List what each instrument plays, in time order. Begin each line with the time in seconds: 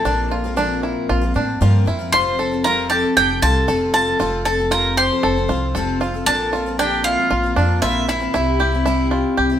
Already playing: fiddle A4, mandolin A5
0.05 upright bass A#1, twelve-string acoustic guitar A#2 D3 F3 A#3 C4 F4, five-string banjo D4
0.31 five-string banjo F4
0.44 twelve-string acoustic guitar F3 A#3 C4 F4
0.56 twelve-string acoustic guitar A#2 D3 F3 A#3 C4 F4, five-string banjo D4
0.83 five-string banjo E4
1.09 upright bass A#1, five-string banjo F4
1.21 twelve-string acoustic guitar F3 A#3 C4 F4
1.34 upright bass A2, twelve-string acoustic guitar F3 A#3 C4 F4, five-string banjo D4
1.61 upright bass G2, twelve-string acoustic guitar A#2 D3 F3 A#3 C4 F4, five-string banjo F4
1.86 upright bass F2, twelve-string acoustic guitar F3 A#3 C4 F4, five-string banjo E4
1.99 twelve-string acoustic guitar F3 A#3 C4 F4
2.12 upright bass F1, twelve-string acoustic guitar F2 C3 F3 C4 F4 A4, five-string banjo F4, fiddle C5, mandolin C6
2.39 twelve-string acoustic guitar F3 C4 F4 A4, five-string banjo A4
2.51 twelve-string acoustic guitar F3 C4 F4 A4
2.64 twelve-string acoustic guitar F2 C3 F3 C4 F4 A4, five-string banjo F4, fiddle A#4, mandolin A#5
2.90 five-string banjo G4, fiddle A4, mandolin A5
3.03 twelve-string acoustic guitar F3 C4 F4 A4
3.16 upright bass F1, fiddle G4, five-string banjo A4, mandolin G5
3.29 twelve-string acoustic guitar F3 C4 F4 A4
3.42 upright bass C2, twelve-string acoustic guitar F3 C4 F4 A4, five-string banjo F4, fiddle A4, mandolin A5
3.68 upright bass F1, twelve-string acoustic guitar F2 C3 F3 C4 F4 A4, five-string banjo A4
3.93 twelve-string acoustic guitar F3 C4 F4 A4, five-string banjo F4, fiddle A4, mandolin A5
4.06 twelve-string acoustic guitar F3 C4 F4 A4
4.19 upright bass F1, twelve-string acoustic guitar F2 C3 F3 C4 F4 A4, five-string banjo F4
4.45 twelve-string acoustic guitar F3 C4 F4 A4, five-string banjo A4, fiddle A4, mandolin A5
4.59 twelve-string acoustic guitar F3 C4 F4 A4
4.71 twelve-string acoustic guitar F2 C3 F3 C4 F4 A4, five-string banjo F4, fiddle A#4, mandolin A#5
4.97 five-string banjo G4, fiddle C5, mandolin C6
5.10 twelve-string acoustic guitar F3 C4 F4 A4
5.23 upright bass F1, five-string banjo A4
5.36 twelve-string acoustic guitar F3 C4 F4 A4
5.48 upright bass C2, twelve-string acoustic guitar F3 C4 F4 A4, five-string banjo F4
5.75 upright bass F1, twelve-string acoustic guitar F2 C3 F3 C4 F4 A4, five-string banjo A4
6.00 twelve-string acoustic guitar F3 C4 F4 A4, five-string banjo F4
6.14 twelve-string acoustic guitar F3 C4 F4 A4
6.26 upright bass A#1, twelve-string acoustic guitar A#2 D3 F3 A#3 C4 F4, five-string banjo D4, fiddle A4, mandolin A5
6.53 twelve-string acoustic guitar F3 A#3 C4 F4, five-string banjo F4
6.66 twelve-string acoustic guitar F3 A#3 C4 F4
6.79 twelve-string acoustic guitar A#2 D3 F3 A#3 C4 F4, five-string banjo D4, fiddle G4, mandolin G5
7.04 five-string banjo E4, fiddle F4, mandolin F5
7.18 twelve-string acoustic guitar F3 A#3 C4 F4
7.31 upright bass A#1, five-string banjo F4
7.43 twelve-string acoustic guitar F3 A#3 C4 F4
7.56 upright bass F2, twelve-string acoustic guitar F3 A#3 C4 F4, five-string banjo D4
7.82 upright bass A#1, twelve-string acoustic guitar A#2 D3 F3 A#3 C4 F4, fiddle E4, five-string banjo F4, mandolin E5
8.08 twelve-string acoustic guitar F3 A#3 C4 F4, fiddle E4, five-string banjo E4, mandolin E5
8.20 twelve-string acoustic guitar F3 A#3 C4 F4
8.34 upright bass C2, twelve-string acoustic guitar C3 G3 C4 E4 G4, five-string banjo E4
8.59 twelve-string acoustic guitar G3 C4 E4 G4, five-string banjo G4
8.72 twelve-string acoustic guitar C4 E4 G4
8.86 twelve-string acoustic guitar C3 G3 C4 E4 G4, five-string banjo E4
9.11 five-string banjo F4
9.37 upright bass C2, five-string banjo G4
9.50 twelve-string acoustic guitar C4 E4 G4